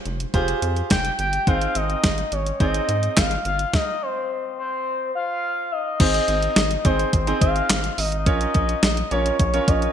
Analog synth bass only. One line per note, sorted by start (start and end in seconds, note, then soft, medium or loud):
0.06 0.25 F1 medium
0.34 0.54 F1 loud
0.62 0.82 F2 loud
0.91 1.10 F1 loud
1.19 1.39 G1 medium
1.47 1.67 G#1 loud
1.76 1.95 G#1 loud
2.04 2.24 G#1 loud
2.32 2.52 G#1 loud
2.60 2.80 G#1 loud
2.89 3.09 G#2 medium
3.17 3.37 G#1 loud
3.45 3.65 G1 medium
6.00 6.20 G#1 loud
6.28 6.48 G#1 loud
6.57 6.76 G#1 loud
6.85 7.05 G#1 loud
7.13 7.33 G#1 loud
7.41 7.61 G#1 loud
7.70 7.90 G#1 loud
7.98 8.28 G#1 loud
8.26 8.46 A#1 loud
8.55 8.75 A#1 loud
8.83 9.03 A#1 loud
9.11 9.31 A#1 loud
9.40 9.59 A#1 loud
9.68 9.88 A#1 loud